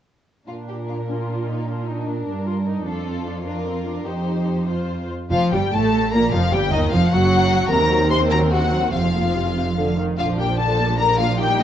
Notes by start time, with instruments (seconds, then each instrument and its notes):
0.48 cello section A#2, viola section D4, violin section F4 A#4
0.68 violin section G4
0.89 violin section F4
1.08 violin section D4, viola section F4
1.28 violin section D4
1.48 violin section D#4
1.67 violin section D4 A#4, viola section F4
1.88 viola section D#4
2.07 viola section D4
2.27 cello section G2, viola section D4
2.46 viola section F4
2.66 viola section D#4
2.86 cello section F2, viola section D4, violin section F4 A4
3.07 viola section C4
3.26 viola section D4
3.45 viola section D4, violin section F4 A#4
3.66 viola section C4
3.86 viola section D4
4.06 cello section F2, viola section D#4, violin section G4 C5
4.68 viola section F4, violin section F4 C5
5.30 double bass section F1, cello section F2, viola section F3, violin section F4 F5
5.52 double bass section G1, cello section G2, viola section G3, violin section G4 G5
5.72 double bass section A1, cello section A2, viola section A3, violin section A4 A5
6.13 double bass section A#1, cello section A#2, viola section A#3, violin section A#4 A#5
6.33 double bass section F1, cello section F2, viola section F3, violin section F4 F5
6.51 double bass section G1, cello section G2, viola section G3, violin section G4 G5
6.72 cello section D#2, double bass section D#2, viola section D#3, violin section D#4 D#5
6.92 double bass section F1, cello section F2, viola section F3, violin section F4 F5
7.11 double bass section F#1, cello section F#2, viola section F#3, violin section F#4 F#5
7.69 double bass section D#2, cello section D#2, viola section C3 C4, violin section A#4 A#5
7.80 viola section D#3
7.90 viola section F#3
8.01 viola section D#3
8.10 viola section C3, violin section C5 C6
8.21 viola section D#3
8.29 viola section F#3, violin section A#4 A#5
8.42 viola section D#3
8.51 viola section C3, violin section F#4 F#5
8.62 viola section D#3
8.72 viola section F#3
8.82 viola section D#3
8.91 double bass section F1, cello section F2, viola section C3, violin section F4 F5
9.03 viola section F3
9.14 viola section A#3
9.24 viola section F3
9.35 viola section C3
9.45 viola section F3
9.56 viola section C3
9.77 viola section D3
9.98 viola section D#3
10.18 double bass section A#1, cello section A#2, viola section D3 D4, violin section F4 F5
10.29 viola section F3
10.38 viola section A#3, violin section G4 G5
10.49 viola section F3
10.58 viola section D3, violin section A4 A5
10.69 viola section F3
10.79 viola section A#3
10.89 viola section F3
10.99 viola section D3, violin section A#4 A#5
11.09 viola section F3
11.19 viola section A#3, violin section F4 F5
11.29 viola section F3
11.39 viola section D#3 D#4, violin section G4 G5
11.50 viola section G3
11.60 viola section A#3